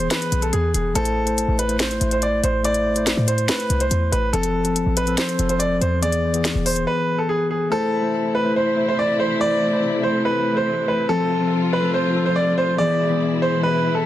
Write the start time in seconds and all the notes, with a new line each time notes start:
Already playing: E3 B3 G#4
0.00 closed hi-hat
0.11 B4, snare, closed hi-hat
0.22 closed hi-hat
0.32 B1, closed hi-hat
0.42 A4, closed hi-hat
0.53 E2 G#4, closed hi-hat
0.74 E1 G#4, closed hi-hat
0.94 A1 A3 E4 A4 C5, closed hi-hat
1.05 closed hi-hat
1.25 A3 E4 C5, closed hi-hat
1.38 closed hi-hat
1.48 A1
1.59 B4, closed hi-hat
1.68 A3 E4 C5, closed hi-hat
1.79 C5, snare, closed hi-hat
1.91 closed hi-hat
2.00 A1 A3 E4 C5, closed hi-hat
2.11 C5, closed hi-hat
2.22 D5, closed hi-hat
2.43 A1 C5, closed hi-hat
2.63 A3 E4 C5 D5, closed hi-hat
2.74 closed hi-hat
2.95 A3 E4 C5, closed hi-hat
3.07 snare, closed hi-hat
3.17 A2
3.28 C5, closed hi-hat
3.38 closed hi-hat
3.48 B4, snare, closed hi-hat
3.60 closed hi-hat
3.70 C2, closed hi-hat
3.80 C5, closed hi-hat
3.91 E2, closed hi-hat
4.12 A1 B4, closed hi-hat
4.33 F1 F3 C4 A4, closed hi-hat
4.43 closed hi-hat
4.64 F3 C4 A4, closed hi-hat
4.76 closed hi-hat
4.86 A1
4.97 B4, closed hi-hat
5.06 F3 C4 A4, closed hi-hat
5.17 C5, snare, closed hi-hat
5.29 closed hi-hat
5.38 F1 F3 C4 A4, closed hi-hat
5.49 C5, closed hi-hat
5.59 D5, closed hi-hat
5.81 E2 C5, closed hi-hat
6.02 E3 B3 G#4 D5, closed hi-hat
6.12 closed hi-hat
6.33 E3 B3 G#4, closed hi-hat
6.45 snare, closed hi-hat
6.55 E1
6.66 C5, open hi-hat
6.76 closed hi-hat
6.87 B4
7.18 A4
7.29 G#4
7.51 G#4
7.70 C3 E3 A3 E4 A4 C5
8.02 A3 E4 C5
8.35 B4
8.44 A3 E4 C5
8.56 C5
8.76 A3 E4 C5
8.88 C5
8.99 D5
9.20 C5
9.39 A3 E4 C5 D5
9.72 A3 E4 C5
10.03 C5
10.25 B4
10.57 C5
10.88 B4
11.09 F3 C4 F4 A4
11.40 F3 C4 A4
11.73 B4
11.83 F3 C4 A4
11.94 C5
12.14 F3 C4 A4
12.26 C5
12.36 D5
12.58 C5
12.78 B2 E3 G#3 B3 E4 G#4 D5
13.10 E3 B3 G#4
13.42 C5
13.63 B4
13.95 A4